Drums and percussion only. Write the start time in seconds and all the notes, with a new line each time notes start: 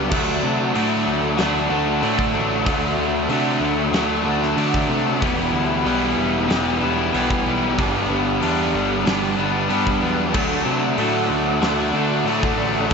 0.11 kick, crash
0.75 open hi-hat
1.38 snare, open hi-hat
2.03 open hi-hat
2.19 kick
2.66 kick, open hi-hat
3.29 open hi-hat
3.94 snare, open hi-hat
4.43 snare
4.58 open hi-hat
4.74 kick
5.22 kick, open hi-hat
5.87 open hi-hat
6.50 snare, open hi-hat
7.14 open hi-hat
7.30 kick
7.78 kick, open hi-hat
8.42 open hi-hat
9.07 snare, open hi-hat
9.70 open hi-hat
9.87 kick
10.34 kick, crash
10.98 open hi-hat
11.62 snare, open hi-hat
12.28 open hi-hat
12.43 kick
12.90 open hi-hat